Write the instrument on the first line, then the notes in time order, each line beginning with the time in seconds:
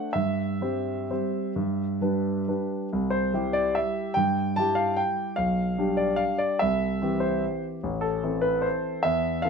grand piano
Already playing: A3 D4 C5 F#5
0.13 G2 E5
0.61 G3 C4 C5
1.10 G3 C4 C5
1.56 G2
2.01 G3 D4 B4
2.48 G3 D4 B4
2.93 C2
3.10 C5
3.34 G3 E4 G4
3.53 D5
3.75 E5
4.14 G2 G5
4.56 G3 E4 G4 A5
4.75 F5
4.96 G5
5.36 B1 F5
5.78 G3 D4 G4
5.97 D5
6.16 F5
6.38 D5
6.59 C2 E5
7.02 E3 C4 G4
7.20 C5
7.83 A1
8.01 A4
8.23 E3 C4 A4
8.41 B4
8.62 C5
9.03 E2 E5
9.42 E3 C4 A4 F5